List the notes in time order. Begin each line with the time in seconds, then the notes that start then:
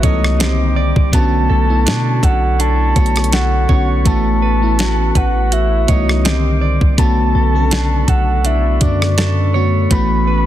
Already playing: E3 G#3 A3 B3 C#4 F#4 B4 F#5 A5 C#6
0.02 C2 E3 A3 B3 C#4 A4 C#5 D#5, kick, closed hi-hat
0.24 cross-stick
0.39 D3 D#3 A#3 C4 G4 C5 G5 A#5 D6, snare, closed hi-hat
0.76 D5
0.96 C2, kick
1.12 B1 D3 A3 B3 C#4 F#4 A4 C#5 A5 B5 C#6, kick, closed hi-hat
1.50 B1 A4
1.68 D3 A3 B3 C#4 E4
1.86 B2 D4, snare, closed hi-hat
2.23 B1 A4 F#5, kick, closed hi-hat
2.59 D4 A5, closed hi-hat
2.95 B1 D3 A3 B3 C#4 F#4 C#5, kick, closed hi-hat
3.06 closed hi-hat
3.16 cross-stick, closed hi-hat
3.24 closed hi-hat
3.33 A4 F#5, snare, closed hi-hat
3.68 B1 D3 A3 B3 C#4 F#4 C#5, kick
4.04 A1 E3 A3 B3 C#4 F#4 F#5 A5, kick, closed hi-hat
4.42 B4
4.61 E3 A3 B3 C#4 E4
4.79 F#4, snare, closed hi-hat
5.15 A1 B4 F#5, kick, closed hi-hat
5.52 F#4 E5, closed hi-hat
5.87 C2 E3 A3 B3 C#4 F#4 C#5 D#5, kick, closed hi-hat
6.09 cross-stick
6.24 D3 D#3 A#3 C4 G4 A#4 C5 C6 D6, snare, closed hi-hat
6.61 D5
6.81 C2, kick
6.97 B1 D3 A3 B3 C#4 F#4 A4 B4 A5 B5 C#6, kick, closed hi-hat
7.35 B1 A4
7.54 C#3 A3 B3 C#4 A4
7.60 D3
7.71 D4, snare, closed hi-hat
8.08 B1 A4 F#5, kick, closed hi-hat
8.45 D4 E5, closed hi-hat
8.80 F#2 D3 A3 B3 D4 F#4 D5, kick, closed hi-hat
9.02 cross-stick
9.18 A4, snare, closed hi-hat
9.54 D3 A3 B3 C#4 F#4 C#5
9.90 A1 E3 A3 B3 C#4 F#4 F#5 B5, kick, closed hi-hat
10.27 B4